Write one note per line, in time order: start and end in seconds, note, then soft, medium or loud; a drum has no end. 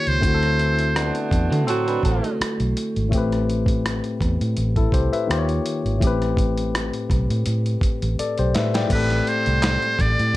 0.00 0.22 D#3 medium
0.00 0.23 A#3 medium
0.00 0.23 F4 medium
0.00 0.24 G4 medium
0.00 0.24 C#5 medium
0.07 0.20 C#2 medium
0.07 1.15 C5 medium
0.07 closed hi-hat soft
0.19 1.10 D2 medium
0.19 3.06 D3 medium
0.19 3.07 A3 medium
0.19 3.08 C4 medium
0.19 kick loud
0.23 3.09 E4 soft
0.23 3.10 F#4 medium
0.23 closed hi-hat medium
0.28 0.32 A4 soft
0.34 3.14 A4 medium
0.42 0.56 F#3 medium
0.42 0.56 C4 medium
0.42 0.56 F#4 medium
0.42 cross-stick soft
0.42 closed hi-hat soft
0.59 0.88 E3 medium
0.59 0.88 C4 medium
0.59 0.88 E4 medium
0.59 closed hi-hat medium
0.79 closed hi-hat soft
0.95 1.63 A3 medium
0.95 1.63 B3 medium
0.95 1.63 D4 medium
0.95 cross-stick loud
0.95 closed hi-hat medium
1.15 closed hi-hat soft
1.31 1.47 E2 medium
1.31 kick medium
1.31 closed hi-hat medium
1.51 1.68 D3 medium
1.51 1.67 A3 medium
1.51 1.67 F#4 medium
1.51 closed hi-hat soft
1.67 1.97 A2 medium
1.67 2.36 F#3 medium
1.67 2.36 C4 medium
1.67 1.87 C4 medium
1.67 2.36 F#4 loud
1.67 1.86 A4 medium
1.67 closed hi-hat medium
1.88 2.03 D4 medium
1.88 2.03 B4 medium
1.88 closed hi-hat soft
2.03 2.19 A1 medium
2.03 2.23 C4 medium
2.03 2.22 A4 medium
2.03 kick medium
2.03 closed hi-hat medium
2.23 3.08 A3 medium
2.23 3.08 F#4 medium
2.23 closed hi-hat soft
2.41 muted fingered electric bass stroke soft
2.41 cross-stick loud
2.41 closed hi-hat medium
2.60 2.73 B1 medium
2.60 closed hi-hat soft
2.77 closed hi-hat medium
2.96 3.09 G#1 medium
2.96 closed hi-hat soft
3.09 5.23 A2 medium
3.09 5.24 A3 medium
3.09 kick loud
3.13 4.00 A1 loud
3.13 5.26 C4 medium
3.13 4.55 G4 medium
3.13 closed hi-hat medium
3.18 4.56 B4 medium
3.32 cross-stick soft
3.32 closed hi-hat soft
3.50 closed hi-hat medium
3.66 kick loud
3.66 closed hi-hat soft
3.86 cross-stick loud
3.86 closed hi-hat medium
4.04 closed hi-hat soft
4.21 4.36 E2 medium
4.21 kick medium
4.21 cross-stick soft
4.21 closed hi-hat soft
4.41 4.54 A2 medium
4.41 closed hi-hat soft
4.57 4.86 A1 medium
4.57 closed hi-hat medium
4.76 4.92 E4 medium
4.76 4.92 A4 medium
4.76 kick medium
4.76 closed hi-hat soft
4.92 5.08 C2 medium
4.92 5.12 G4 medium
4.92 5.11 C5 medium
4.92 kick medium
4.92 closed hi-hat medium
5.13 5.47 B4 medium
5.13 5.47 E5 medium
5.13 closed hi-hat soft
5.27 5.59 D#2 medium
5.27 6.00 D#3 medium
5.27 6.01 A#3 medium
5.27 6.02 F4 medium
5.27 6.02 G4 medium
5.27 cross-stick loud
5.27 closed hi-hat medium
5.32 5.37 C5 medium
5.39 6.06 C#5 medium
5.49 closed hi-hat soft
5.66 closed hi-hat medium
5.85 5.98 G#1 medium
5.85 closed hi-hat soft
5.98 6.89 A1 loud
5.98 8.85 A2 medium
5.98 8.86 A3 medium
5.98 kick loud
6.02 8.87 C4 medium
6.02 7.80 G4 medium
6.02 closed hi-hat medium
6.07 7.81 B4 medium
6.22 cross-stick soft
6.22 closed hi-hat soft
6.37 kick medium
6.37 closed hi-hat medium
6.58 closed hi-hat soft
6.75 cross-stick loud
6.75 closed hi-hat medium
6.93 closed hi-hat soft
7.10 7.25 B1 medium
7.10 kick medium
7.10 cross-stick soft
7.10 closed hi-hat medium
7.30 7.43 A2 medium
7.30 closed hi-hat soft
7.46 7.75 A2 medium
7.46 closed hi-hat medium
7.66 closed hi-hat soft
7.81 muted fingered electric bass stroke soft
7.81 kick medium
7.81 closed hi-hat medium
8.02 8.15 A1 medium
8.02 closed hi-hat soft
8.19 8.37 A4 soft
8.19 8.37 D5 medium
8.19 closed hi-hat medium
8.38 8.52 B1 medium
8.38 8.54 G4 medium
8.38 8.54 C5 medium
8.38 closed hi-hat soft
8.55 8.84 A2 medium
8.55 8.73 B4 soft
8.55 8.73 E5 medium
8.55 snare medium
8.55 closed hi-hat medium
8.74 9.09 D5 soft
8.74 9.08 G5 medium
8.74 snare medium
8.74 closed hi-hat soft
8.86 10.37 A2 medium
8.86 10.37 A3 medium
8.86 kick loud
8.86 crash medium
8.91 9.19 A1 medium
8.91 10.37 C4 medium
8.91 10.37 G4 medium
8.91 9.30 B4 medium
8.91 closed hi-hat medium
8.95 10.37 A4 medium
9.10 snare soft
9.10 closed hi-hat soft
9.27 10.03 C5 medium
9.27 closed hi-hat medium
9.46 9.76 C2 medium
9.46 closed hi-hat soft
9.63 snare loud
9.63 clap medium
9.63 closed hi-hat medium
9.82 closed hi-hat soft
9.99 10.15 A1 medium
9.99 10.37 D5 medium
9.99 kick medium
9.99 snare soft
9.99 closed hi-hat medium
10.19 10.32 A2 medium
10.19 closed hi-hat soft